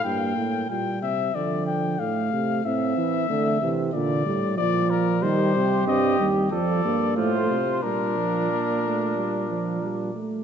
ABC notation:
X:1
M:4/4
L:1/8
Q:1/4=92
K:Gm
V:1 name="Trumpet"
g2 g =e d g f2 | =e4 d2 d B | [K:Bb] c2 e z d2 c2 | B6- B z |]
V:2 name="Flugelhorn"
z8 | z8 | [K:Bb] G4 A2 F2 | D6- D z |]
V:3 name="Euphonium" clef=bass
B,2 G,2 F,2 A,2 | C2 A, =E, D, G, F,2 | [K:Bb] G,2 C G, F, B, A, z | G, F, B, A, G, F, G, A, |]
V:4 name="Bass trombone" clef=bass
G,, A,, B,, C, D,2 A,, C, | A,, =E, D, C, B,, A,, B,,2 | [K:Bb] E, C, G,, E,, F,, G,, A,, C, | B,,6- B,, z |]